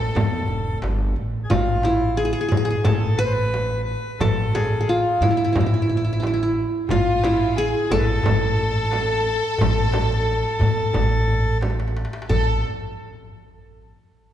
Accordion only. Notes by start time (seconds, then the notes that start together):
Already playing: A4
1.44 G#4
1.51 F4
2.18 G#4
2.86 A4
2.93 G#4
2.99 A4
3.17 B4
3.25 C5
3.31 B4
3.85 B4
4.19 A4
4.87 F4
4.94 E4
5.01 F4
5.21 E4
5.27 F4
5.35 E4
6.89 F4
7.24 E4
7.31 F4
7.37 E4
7.58 G#4
7.90 A4
7.98 B4
8.04 A4
12.30 A4